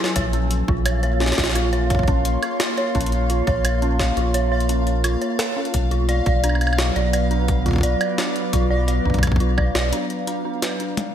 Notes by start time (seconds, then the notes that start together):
Already playing: F#3 C#4 A4 G#5 E6
0.04 snare
0.16 A#1 A#3 C#5 F5, kick, closed hi-hat
0.23 F4
0.33 C#4, closed hi-hat
0.51 closed hi-hat
0.68 A#1 F4, kick
0.86 C#5, closed hi-hat, high woodblock
1.03 C#5, closed hi-hat
1.20 C#4 C6, snare
1.26 snare
1.32 snare
1.38 A#1, kick, snare, closed hi-hat
1.44 C#5, snare
1.50 snare
1.55 F4, closed hi-hat, high woodblock
1.73 C#5, closed hi-hat
1.90 C#5, kick, closed hi-hat
1.95 kick
1.99 kick
2.03 kick
2.08 C#4, kick, closed hi-hat
2.25 closed hi-hat
2.43 F4, closed hi-hat, high woodblock
2.60 C#5, snare, closed hi-hat
2.77 C#5, closed hi-hat
2.95 A#1 C#4, kick, closed hi-hat
3.01 closed hi-hat
3.06 closed hi-hat
3.12 closed hi-hat
3.30 F4, closed hi-hat
3.47 A#1 C#5, kick, closed hi-hat
3.65 C#5, closed hi-hat, high woodblock
3.82 C#4, closed hi-hat
4.00 kick, snare
4.17 A#1 F4, closed hi-hat
4.34 C#5, closed hi-hat
4.52 C#5
4.60 closed hi-hat
4.69 C#4, closed hi-hat
4.87 closed hi-hat
5.04 F4, closed hi-hat, high woodblock
5.22 C#5, closed hi-hat
5.39 C#5, snare, closed hi-hat
5.57 C#4
5.65 closed hi-hat
5.74 B1 B3, kick, closed hi-hat
5.87 F#3
5.91 F4, closed hi-hat
6.09 D5, closed hi-hat
6.26 B1 D5, kick, closed hi-hat
6.32 B4
6.44 D4, closed hi-hat, high woodblock
6.49 high woodblock
6.55 high woodblock
6.61 closed hi-hat, high woodblock
6.67 high woodblock
6.73 high woodblock
6.78 F4, snare
6.96 B1 D5, closed hi-hat
7.13 D5, closed hi-hat, high woodblock
7.31 D4, closed hi-hat
7.48 kick, closed hi-hat
7.66 F4, kick, closed hi-hat
7.68 kick
7.71 kick
7.73 kick
7.76 kick
7.78 kick
7.81 D5, kick, closed hi-hat
8.01 D5, closed hi-hat, high woodblock
8.18 D4, snare, closed hi-hat
8.36 closed hi-hat
8.53 B1 F4, kick, closed hi-hat
8.71 D5
8.88 D5, closed hi-hat
9.05 B1 D4, kick
9.10 kick
9.14 kick, closed hi-hat
9.19 kick
9.23 kick, closed hi-hat, high woodblock
9.27 kick
9.32 kick
9.36 kick
9.40 F4, closed hi-hat
9.58 D5, kick, high woodblock
9.75 B1 D5, snare
9.93 D4, closed hi-hat
10.10 closed hi-hat
10.27 D4, closed hi-hat
10.45 D4
10.62 B4, snare, closed hi-hat
10.80 D4, closed hi-hat
10.97 closed hi-hat, mid tom